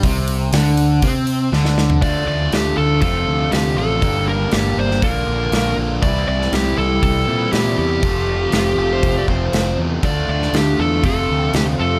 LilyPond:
<<
  \new Staff \with { instrumentName = "Electric slide guitar" } { \time 4/4 \key d \minor \tempo 4 = 120 r1 | r1 | r1 | r1 |
r4 f'16 g'8 c''8 d''16 c''4 r8 | r1 | }
  \new Staff \with { instrumentName = "Lead electric guitar" } { \time 4/4 \key d \minor r1 | d''8 d''8 g'8 a'8 a'4 g'8 a'8~ | a'8 bes'8 g'8 c''8 bes'4. r8 | d''8 d''8 g'8 a'8 a'4 g'8 g'8~ |
g'2~ g'8 r4. | d''8 d''8 g'8 a'8 a'4 g'8 a'8 | }
  \new Staff \with { instrumentName = "Distorted electric guitar" } { \time 4/4 \key d \minor c4 d4 c'4 d4 | <d a d' f'>4. <d a d' f'>8 <f, c f a c' f'>4. <f, c f a c' f'>8 | <g, d g bes d' g'>4. <g, d g bes d' g'>8 <bes, d bes d' f'>4. <bes, d bes d' f'>8 | <c e g c' e'>4. <c e g c' e'>2~ <c e g c' e'>8 |
<f, c f a c' f'>4. <f, c f a c' f'>2~ <f, c f a c' f'>8 | <d a d' f'>4. <d a d' f'>8 <f, c f a c' f'>4. <f, c f a c' f'>8 | }
  \new Staff \with { instrumentName = "Overdriven electric guitar" } { \clef bass \time 4/4 \key d \minor c4 d4 c'4 d4 | <d a d' f'>2 <f, c f a c' f'>2 | <g, d g bes d' g'>2 <bes, d bes d' f'>2 | <c e g c' e'>2~ <c e g c' e'>8 <c e g c' e'>8 <c e g c' e'>4 |
<f, c f a c' f'>2~ <f, c f a c' f'>8 <f, c f a c' f'>8 <f, c f a c' f'>4 | <d a d' f'>2 <f, c f a c' f'>2 | }
  \new Staff \with { instrumentName = "Fingered electric bass" } { \clef bass \time 4/4 \key d \minor c,4 d,4 c4 d,4 | d,8 d,8 d,8 d,8 f,,8 d,8 d,8 a,,8 | g,,4 g,,8 g,,8 bes,,8 bes,,8 bes,,8 bes,,8 | c,8 c,8 c,8 c,8 c,8 bes,8 bes,8 e,8 |
f,,4 f,,8 f,,8 f,,8 f,,8 f,,8 e,8 | d,8 d,8 d,8 e,8 f,,8 d,8 d,8 f,8 | }
  \new DrumStaff \with { instrumentName = "Drums" } \drummode { \time 4/4 <hho bd>8 hho8 <hho sn>8 hho8 <hho bd>8 hho8 sn16 sn16 sn16 tomfh16 | <hho bd>4 <hho sn>4 <hho bd>4 <hho sn>4 | <hho bd>4 <hho sn>8. sn16 <hho bd>4 <hho sn>4 | <hho bd>8. sn16 <hho sn>4 <hho bd>4 <hho sn>4 |
<hho bd>4 <hho sn>4 <hho bd>8 bd8 <hho sn>4 | <hho bd>8. sn16 <hho sn>4 <hho bd>4 <hho sn>4 | }
>>